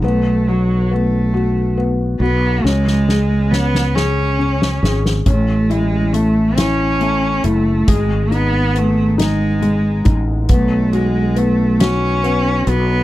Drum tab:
HH |------------|------------|x-x-x-x-x-x-|x-x-x-x-x-x-|
SD |------------|ooo-ooo--ooo|------o-----|------o-----|
BD |------------|------------|o-----------|o---------o-|

HH |x-x-x-x-x-x-|
SD |------o-----|
BD |o-----------|